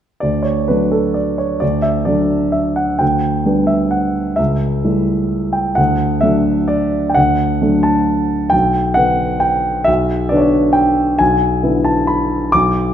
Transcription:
0.20 D2 D5
0.43 C#5
0.68 F#3 A3 D4 B4
0.92 A4
1.14 D5
1.38 C#5
1.60 D2 D5
1.82 E5
2.05 F#3 A3 D4 D5
2.52 E5
2.76 F#5
2.99 D2 G5
3.46 G3 B3 D4
3.67 E5
3.91 F#5
4.36 C#2 E5
4.84 G3 A3 E4
5.53 G5
5.75 D2 F#5
6.21 F#3 A3 D4 E5
6.68 D5
7.09 G5
7.15 D2 F#5
7.62 F#3 A3 D4
7.83 A5
8.50 B1 G5
8.94 D3 B3 D4 F#5
9.40 G5
9.84 B1 E5
10.29 D3 B3 D4 D5
10.37 C#5
10.41 D5
10.73 G5
11.19 B1 G#5
11.63 D3 B3 E4
11.84 A5
12.07 B5
12.52 B1 D6

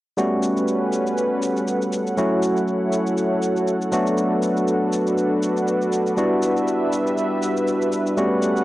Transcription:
0.17 G3 A3 B3 C#4 F#4 A4 B4 F#5, cabasa
0.43 cabasa
0.57 cabasa
0.68 cabasa
0.93 cabasa
1.07 cabasa
1.18 cabasa
1.43 cabasa
1.57 cabasa
1.68 cabasa
1.82 cabasa
1.93 cabasa
2.07 cabasa
2.17 F#3 A3 C#4 E4 F#4 C#5, cabasa
2.43 cabasa
2.57 cabasa
2.68 cabasa
2.93 cabasa
3.07 cabasa
3.18 cabasa
3.43 cabasa
3.57 cabasa
3.68 cabasa
3.82 cabasa
3.92 F#3 A3 B3 D4 F#4 B4, cabasa
4.07 cabasa
4.18 cabasa
4.43 cabasa
4.57 cabasa
4.68 cabasa
4.93 cabasa
5.07 cabasa
5.18 cabasa
5.43 cabasa
5.57 cabasa
5.68 cabasa
5.82 cabasa
5.93 cabasa
6.07 cabasa
6.17 G3 B3 D4 E4 F#4 E5, cabasa
6.43 cabasa
6.57 cabasa
6.68 cabasa
6.93 cabasa
7.07 cabasa
7.18 cabasa
7.43 cabasa
7.57 cabasa
7.68 cabasa
7.82 cabasa
7.92 cabasa
8.07 cabasa
8.17 G3 A3 B3 C#4 F#4 A4 F#5, cabasa
8.43 cabasa
8.57 cabasa

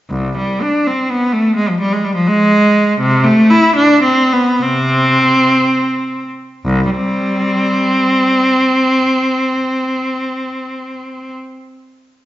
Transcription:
0.10 C2
0.37 G3
0.62 D4
0.87 C4
1.10 B3
1.32 A3
1.56 G#3
1.69 F3
1.80 G3
1.93 G#3
2.04 G3
2.15 F3
2.28 G#3
3.00 C3
3.24 A3
3.50 E4
3.76 D4
4.03 C4
4.33 B3
4.62 C3 C4
6.65 C2
6.90 G3 C4

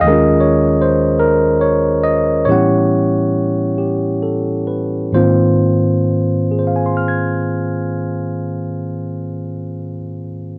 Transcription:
0.01 D#2 D#3 D#5
0.07 G#3 C#4 G#4 A#4
0.13 F4
0.41 C#5
0.82 C5
1.20 A#4
1.61 C#5
2.03 D#5
2.45 A2 E3 G3 E4 G4 C#5
2.49 B3 C#4 F#5
3.78 G4
4.22 A4
4.67 B4
5.13 G#2 D#3 A#3 C4 F4 C5
6.51 G#4
6.59 C5
6.67 F5
6.76 G#5
6.86 C6
6.97 F6
7.08 G#6

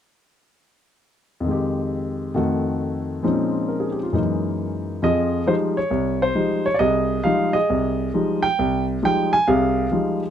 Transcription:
1.40 F2 D#3
1.48 G#3 G4
2.34 F2 D#3 A3 F#4
3.23 A#2 F3 G#3 C4 C#4 D#4
3.68 A#4
3.80 G#4
3.91 G4
4.03 F4
4.13 F#2 E3 G#3 A#3 D#4
5.02 F2 F3 G#4 D#5
5.46 F3 G3 G#3 D#4 C5
5.77 C#5
5.91 C2
6.22 C5
6.35 F3 G3 G#3 D#4
6.66 C#5
6.74 D5
6.79 C2 G#4 D#5
7.24 F3 G3 G#3 D#4 F5
7.53 G#4 D#5
7.70 C2
8.14 F3 G3 G#3 D#4
8.43 G5
8.59 C2
9.02 F3 G3 G#3 D#4 G5
9.33 G#5
9.47 C2 C3 G#4 F5
9.91 F3 G3 G#3 D#4

